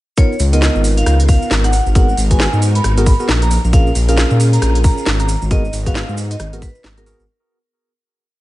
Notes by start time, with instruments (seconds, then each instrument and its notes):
0.17 tine electric piano B3 D#4 F4 A#4, string machine B3 D#4 F4 A#4, vibraphone C#5, kick, closed hi-hat, maracas
0.32 maracas
0.40 detuned saw bass C#2, open hi-hat, maracas
0.53 tine electric piano B3 D#4 F4 A#4, vibraphone D#5, closed hi-hat, maracas
0.62 snare, maracas
0.75 detuned saw bass G#1, maracas
0.84 open hi-hat, maracas
0.97 vibraphone F5, closed hi-hat, maracas
1.06 detuned saw bass C#2, cross-stick, closed hi-hat, maracas
1.20 closed hi-hat, maracas
1.28 vibraphone F5, kick, open hi-hat, maracas
1.42 maracas
1.51 detuned saw bass G#1, snare, maracas
1.64 vibraphone F#5, cross-stick, closed hi-hat, maracas
1.73 string machine B3 D#4 F#4, open hi-hat, maracas
1.86 detuned saw bass G#1, maracas
1.95 tine electric piano B3 F#4 G#4 A#4, vibraphone F#5, kick, closed hi-hat, maracas
2.09 maracas
2.17 detuned saw bass G#1, open hi-hat, maracas
2.30 tine electric piano B3 F#4 G#4 B4, vibraphone G#5, kick, closed hi-hat, maracas
2.40 snare, maracas
2.53 detuned saw bass G#2, maracas
2.62 open hi-hat, maracas
2.75 vibraphone B5, closed hi-hat, maracas
2.84 detuned saw bass G#1, cross-stick, closed hi-hat, maracas
2.97 tine electric piano B3 F#4 G#4 A#4, closed hi-hat, maracas
3.06 vibraphone B5, kick, open hi-hat, maracas
3.20 tine electric piano B3 F#4 G#4 A#4, maracas
3.29 detuned saw bass A#1, snare, maracas
3.42 vibraphone A#5, cross-stick, closed hi-hat, maracas
3.51 string machine C#4 F4 G#4, open hi-hat, maracas
3.64 detuned saw bass A#1, maracas
3.73 tine electric piano C#4 F4 G#4 A#4, vibraphone F5, kick, closed hi-hat, maracas
3.87 maracas
3.95 detuned saw bass A#1, open hi-hat, maracas
4.08 tine electric piano C#4 F4 G#4 A#4, vibraphone F5, closed hi-hat, maracas
4.17 snare, maracas
4.30 detuned saw bass A#2, maracas
4.40 open hi-hat, maracas
4.53 vibraphone A#5, closed hi-hat, maracas
4.62 detuned saw bass A#1, cross-stick, closed hi-hat, maracas
4.75 closed hi-hat, maracas
4.84 vibraphone A#5, kick, open hi-hat, maracas
4.98 maracas
5.06 detuned saw bass G#1, snare, maracas
5.19 vibraphone A#5, cross-stick, closed hi-hat, maracas
5.29 string machine B3 D#4 F#4, open hi-hat, maracas
5.42 detuned saw bass G#1, maracas
5.51 tine electric piano B3 F#4 G#4 A#4, vibraphone D#5, kick, closed hi-hat, maracas
5.65 maracas
5.73 detuned saw bass G#1, open hi-hat, maracas
5.86 tine electric piano B3 F#4 G#4 B4, vibraphone F5, kick, closed hi-hat, maracas
5.95 snare, maracas
6.09 detuned saw bass G#2, maracas
6.17 open hi-hat, maracas
6.31 vibraphone D#5, closed hi-hat, maracas
6.40 detuned saw bass G#1, cross-stick, closed hi-hat, maracas
6.53 tine electric piano B3 F#4 G#4 A#4, closed hi-hat, maracas
6.62 vibraphone B4, kick, open hi-hat, maracas
6.75 maracas
6.84 detuned saw bass G#1, snare, maracas
6.97 tine electric piano B3 F#4 G#4 A#4, vibraphone A#4, cross-stick, closed hi-hat, maracas
7.06 tine electric piano B3 F#4 G#4 A#4, open hi-hat, maracas
7.20 detuned saw bass G#1, maracas